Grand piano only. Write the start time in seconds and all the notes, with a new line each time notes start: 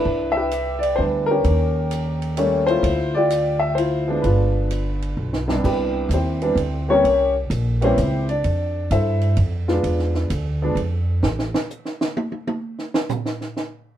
Already playing: D4 E4 B4
0.32 E5
0.37 G4 B4
0.79 D5
0.96 E3 G3 B3 D4 C5
1.26 A#4
1.31 C#4 G4
2.37 G3 A3 A#3 C#4
2.67 E4 F4 C5
3.14 F4 G4 D5
3.60 E5
3.75 E4 F4 C5
4.08 F3 G#3 B3 D4
4.22 D4 F4 B4
5.48 C2 E3 G3 B3 D4
5.65 B3 E4 G4 B4
6.14 C4 E4 G4 C5
6.42 E3 G3 B3 D4
6.88 E3 G3 A#3 C4 C#4 G4 A#4 C#5
7.81 E3 G3 A#3 C4 C#4 E4 G4 C5
8.29 D4 D5
8.92 E4 A4 C5 E5
9.68 G#3 B3 D4 F4
10.62 F3 G#3 B3 D4